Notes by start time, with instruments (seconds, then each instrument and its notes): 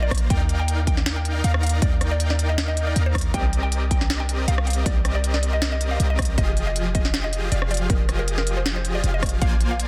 Already playing: 808-style bass A#1, supersaw synth A#3 F4 C5 D5 A#5
0.02 synth pluck D5
0.11 kick, cross-stick, closed hi-hat
0.15 closed hi-hat
0.18 closed hi-hat
0.30 808-style bass D#2, supersaw synth D#4 A#4 D5 F5 G5, synth pluck G5, kick, closed hi-hat
0.49 closed hi-hat
0.59 synth pluck G5
0.68 closed hi-hat
0.87 synth pluck G5, kick, closed hi-hat
0.97 snare
1.06 snare, closed hi-hat
1.16 synth pluck G5
1.25 closed hi-hat
1.44 808-style bass D#2, supersaw synth D#4 A#4 D5 F5 A#5, synth pluck F5, closed hi-hat
1.54 cross-stick
1.63 synth pluck F5, closed hi-hat
1.66 closed hi-hat
1.69 closed hi-hat
1.82 808-style bass D#2, synth pluck D5, kick, closed hi-hat
2.01 cross-stick, closed hi-hat
2.11 synth pluck D5
2.20 closed hi-hat
2.30 synth pluck D5, snare
2.39 closed hi-hat
2.49 synth pluck D#5
2.58 snare, closed hi-hat
2.68 synth pluck D#5
2.77 closed hi-hat
2.87 synth pluck D5
2.96 808-style bass D#2, supersaw synth D#4 A#4 D5 F5 A#5, closed hi-hat
3.06 synth pluck C5
3.15 kick, cross-stick, closed hi-hat
3.18 closed hi-hat
3.21 closed hi-hat
3.34 808-style bass C2, supersaw synth C4 G4 A#4 D5 D#5, synth pluck G5, kick, closed hi-hat
3.53 closed hi-hat
3.63 synth pluck G5
3.72 closed hi-hat
3.91 synth pluck G5, kick, closed hi-hat
4.01 snare
4.10 snare, closed hi-hat
4.20 synth pluck G5
4.29 closed hi-hat
4.48 808-style bass C2, supersaw synth C4 G4 A#4 D5 D#5, synth pluck F5, closed hi-hat
4.58 cross-stick
4.67 synth pluck F5, closed hi-hat
4.70 closed hi-hat
4.73 closed hi-hat
4.86 808-style bass C2, synth pluck D5, supersaw synth D#5, kick, closed hi-hat
5.05 cross-stick, closed hi-hat
5.15 synth pluck D5
5.24 closed hi-hat
5.34 synth pluck D5, snare
5.43 closed hi-hat
5.53 synth pluck D#5
5.62 snare, closed hi-hat
5.72 synth pluck D#5
5.81 closed hi-hat
5.91 synth pluck F5
6.00 808-style bass C2, supersaw synth C4 G4 A#4 D5 D#5, closed hi-hat
6.10 synth pluck D#5
6.19 kick, cross-stick, closed hi-hat
6.22 closed hi-hat
6.25 closed hi-hat
6.38 808-style bass F1, supersaw synth F3 F4 G4 G#4 D#5, synth pluck D#5, kick, closed hi-hat
6.57 closed hi-hat
6.67 synth pluck D#5
6.76 closed hi-hat
6.95 synth pluck D#5, kick, closed hi-hat
7.05 snare
7.14 snare, closed hi-hat
7.24 synth pluck D#5
7.33 closed hi-hat
7.52 808-style bass F1, supersaw synth F3 F4 G4 G#4 F5, synth pluck D5, closed hi-hat
7.62 cross-stick
7.71 synth pluck D5, closed hi-hat
7.74 closed hi-hat
7.77 closed hi-hat
7.90 808-style bass F1, supersaw synth F3 F4 G#4 D#5, synth pluck A#4, kick, closed hi-hat
8.09 cross-stick, closed hi-hat
8.19 synth pluck A#4
8.28 closed hi-hat
8.38 synth pluck A#4, snare
8.47 closed hi-hat
8.57 synth pluck C5
8.66 snare, closed hi-hat
8.76 synth pluck C5
8.85 closed hi-hat
8.95 synth pluck D5
9.04 808-style bass F1, supersaw synth F3 F4 G4 G#4 F5, closed hi-hat
9.14 synth pluck D#5
9.23 kick, cross-stick, closed hi-hat
9.26 closed hi-hat
9.29 closed hi-hat
9.42 808-style bass A#1, supersaw synth A#3 F4 C5 D5 G#5, synth pluck F5, kick, closed hi-hat
9.61 closed hi-hat
9.71 synth pluck F5
9.80 closed hi-hat